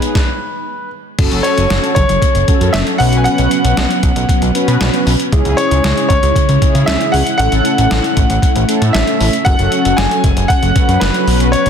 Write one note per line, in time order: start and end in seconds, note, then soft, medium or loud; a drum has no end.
0.00 0.12 G#3 medium
0.00 0.15 B3 medium
0.00 0.14 D#4 medium
0.00 0.15 D#4 medium
0.00 0.15 G#4 medium
0.00 0.14 B4 medium
0.00 0.88 B4 medium
0.00 closed hi-hat medium
0.15 kick loud
0.15 snare medium
1.19 1.28 F#1 loud
1.19 5.29 F#3 medium
1.19 1.96 C#4 medium
1.19 5.29 C#4 medium
1.19 1.96 F#4 medium
1.19 1.96 A4 loud
1.19 2.98 A4 medium
1.19 kick loud
1.19 closed hi-hat medium
1.19 crash loud
1.31 1.41 F#1 loud
1.31 closed hi-hat soft
1.43 1.93 C#5 medium
1.43 closed hi-hat medium
1.57 1.67 F#1 loud
1.57 closed hi-hat medium
1.70 1.80 F#1 loud
1.70 snare loud
1.70 closed hi-hat medium
1.84 closed hi-hat medium
1.95 2.06 F#1 medium
1.95 2.75 C#5 medium
1.95 kick medium
1.95 closed hi-hat medium
2.09 2.18 F#1 loud
2.09 closed hi-hat medium
2.22 kick medium
2.22 closed hi-hat medium
2.35 2.44 F#1 medium
2.35 closed hi-hat medium
2.48 2.98 C#4 medium
2.48 2.99 F#4 medium
2.48 3.00 A4 medium
2.48 kick loud
2.48 closed hi-hat medium
2.61 2.70 F#2 loud
2.61 closed hi-hat medium
2.73 2.83 F#1 loud
2.73 2.79 E5 loud
2.73 snare loud
2.73 closed hi-hat medium
2.87 closed hi-hat soft
2.98 3.28 B1 loud
2.98 5.30 B3 medium
2.98 3.82 C#4 medium
2.98 3.82 F#4 medium
2.98 3.82 B4 medium
2.98 3.17 F#5 loud
2.98 open hi-hat medium
3.13 closed hi-hat medium
3.17 3.25 G#5 medium
3.24 5.02 F#5 loud
3.24 closed hi-hat medium
3.38 3.48 B1 loud
3.38 closed hi-hat soft
3.51 closed hi-hat medium
3.64 3.74 B1 medium
3.64 closed hi-hat medium
3.77 3.87 B1 loud
3.77 snare loud
3.77 closed hi-hat medium
3.91 closed hi-hat medium
4.03 4.12 B1 loud
4.03 kick medium
4.03 closed hi-hat medium
4.16 4.25 B1 medium
4.16 closed hi-hat medium
4.29 kick medium
4.29 closed hi-hat medium
4.42 4.51 B1 loud
4.42 closed hi-hat medium
4.55 5.13 C#4 medium
4.55 5.13 F#4 medium
4.55 5.13 B4 loud
4.55 closed hi-hat medium
4.68 4.77 B2 medium
4.68 closed hi-hat medium
4.81 4.90 B1 loud
4.81 snare loud
4.81 closed hi-hat medium
4.94 closed hi-hat soft
5.07 5.16 B1 loud
5.07 open hi-hat medium
5.20 closed hi-hat medium
5.32 5.42 C#2 loud
5.32 7.37 C#3 medium
5.32 7.37 G#3 medium
5.32 6.10 C#4 medium
5.32 6.10 E4 medium
5.32 9.42 E4 medium
5.32 6.10 G#4 loud
5.32 kick loud
5.32 closed hi-hat medium
5.45 5.55 C#2 loud
5.45 closed hi-hat soft
5.57 6.07 C#5 loud
5.57 closed hi-hat medium
5.71 5.81 C#2 loud
5.71 closed hi-hat medium
5.84 5.94 C#2 loud
5.84 snare loud
5.84 closed hi-hat medium
5.97 closed hi-hat medium
6.09 6.19 C#2 loud
6.09 6.89 C#5 medium
6.09 kick medium
6.09 closed hi-hat medium
6.23 6.32 C#2 medium
6.23 closed hi-hat medium
6.36 kick medium
6.36 closed hi-hat medium
6.49 6.58 C#2 loud
6.49 closed hi-hat medium
6.62 7.20 C#4 medium
6.62 7.20 E4 medium
6.62 7.20 G#4 medium
6.62 kick loud
6.62 closed hi-hat medium
6.75 6.84 C#3 loud
6.75 closed hi-hat medium
6.86 6.97 C#2 loud
6.86 7.11 E5 medium
6.86 snare loud
6.86 closed hi-hat medium
7.01 closed hi-hat soft
7.12 7.23 C#2 loud
7.12 7.36 F#5 medium
7.12 open hi-hat medium
7.27 closed hi-hat medium
7.38 7.49 A1 loud
7.38 9.44 A3 medium
7.38 11.70 C#4 medium
7.38 8.16 C#4 medium
7.38 8.16 E4 medium
7.38 8.16 A4 medium
7.38 8.98 F#5 loud
7.38 closed hi-hat medium
7.52 7.62 A1 medium
7.52 closed hi-hat medium
7.65 closed hi-hat medium
7.78 7.88 A1 loud
7.78 closed hi-hat medium
7.91 8.00 A1 loud
7.91 snare loud
7.91 closed hi-hat medium
8.04 closed hi-hat medium
8.17 8.26 A1 loud
8.17 kick medium
8.17 closed hi-hat medium
8.30 8.39 A1 medium
8.30 closed hi-hat medium
8.42 kick medium
8.42 closed hi-hat medium
8.56 8.65 A1 loud
8.56 closed hi-hat medium
8.69 9.26 C#4 medium
8.69 9.26 E4 medium
8.69 9.26 A4 loud
8.69 closed hi-hat medium
8.82 8.91 A2 medium
8.82 closed hi-hat medium
8.93 9.04 A1 loud
8.93 9.47 E5 medium
8.93 snare loud
8.93 closed hi-hat medium
9.07 closed hi-hat soft
9.20 9.30 A1 loud
9.20 open hi-hat medium
9.33 closed hi-hat medium
9.45 9.56 F#1 loud
9.45 11.70 F#3 medium
9.45 10.23 C#4 medium
9.45 10.23 F#4 medium
9.45 10.23 A4 medium
9.45 11.25 A4 medium
9.45 9.99 F#5 loud
9.45 kick loud
9.45 closed hi-hat medium
9.59 9.69 F#1 loud
9.59 closed hi-hat soft
9.72 closed hi-hat medium
9.85 9.94 F#1 loud
9.85 closed hi-hat medium
9.97 10.07 F#1 loud
9.97 10.51 G#5 loud
9.97 snare loud
9.97 closed hi-hat medium
10.11 closed hi-hat medium
10.24 10.33 F#1 medium
10.24 kick medium
10.24 closed hi-hat medium
10.37 10.46 F#1 loud
10.37 closed hi-hat medium
10.48 10.97 F#5 loud
10.48 kick medium
10.48 closed hi-hat medium
10.63 10.72 F#1 loud
10.63 closed hi-hat medium
10.76 11.26 C#4 medium
10.76 11.26 F#4 medium
10.76 11.26 B4 medium
10.76 kick loud
10.76 closed hi-hat medium
10.88 10.98 F#2 loud
10.88 closed hi-hat medium
11.00 11.11 F#1 loud
11.00 11.49 B4 medium
11.00 snare loud
11.00 closed hi-hat medium
11.14 closed hi-hat soft
11.27 11.55 B1 loud
11.27 11.70 B3 medium
11.27 11.70 C#4 medium
11.27 11.70 F#4 medium
11.27 11.70 B4 medium
11.27 open hi-hat medium
11.40 closed hi-hat medium
11.52 11.70 C#5 loud
11.52 closed hi-hat medium
11.66 11.70 B1 loud
11.66 closed hi-hat soft